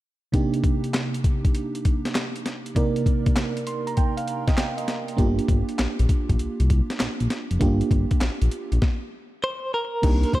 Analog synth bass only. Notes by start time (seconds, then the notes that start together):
5.19 G1
5.49 G1
5.79 A#1
5.99 A#1
6.30 A#1
6.40 C2
6.60 C2
7.01 A#1
7.21 A#1
7.51 F1
7.61 G1
7.91 G1
8.22 A#1
8.42 A#1
8.72 A#1
10.03 C2
10.33 C2